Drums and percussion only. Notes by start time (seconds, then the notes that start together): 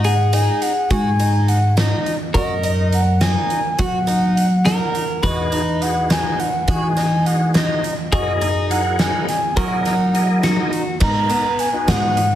0.04 closed hi-hat
0.33 closed hi-hat
0.62 closed hi-hat
0.91 kick, closed hi-hat
1.20 closed hi-hat
1.48 closed hi-hat
1.78 snare, closed hi-hat
2.06 closed hi-hat
2.35 kick, closed hi-hat
2.64 closed hi-hat
2.93 closed hi-hat
3.21 snare, closed hi-hat
3.50 closed hi-hat
3.79 kick, closed hi-hat
4.08 closed hi-hat
4.37 closed hi-hat
4.66 snare, closed hi-hat
4.95 closed hi-hat
5.24 kick, closed hi-hat
5.53 closed hi-hat
5.82 closed hi-hat
6.10 snare, closed hi-hat
6.40 closed hi-hat
6.68 kick, closed hi-hat
6.98 snare, closed hi-hat
7.26 closed hi-hat
7.55 snare, closed hi-hat
7.84 closed hi-hat
8.13 kick, closed hi-hat
8.42 closed hi-hat
8.71 closed hi-hat
8.99 snare, closed hi-hat
9.29 snare, closed hi-hat
9.57 kick, closed hi-hat
9.86 snare, closed hi-hat
10.15 closed hi-hat
10.43 snare, closed hi-hat
10.73 closed hi-hat
11.01 kick, crash
11.30 closed hi-hat
11.59 closed hi-hat
11.88 snare, closed hi-hat
12.17 closed hi-hat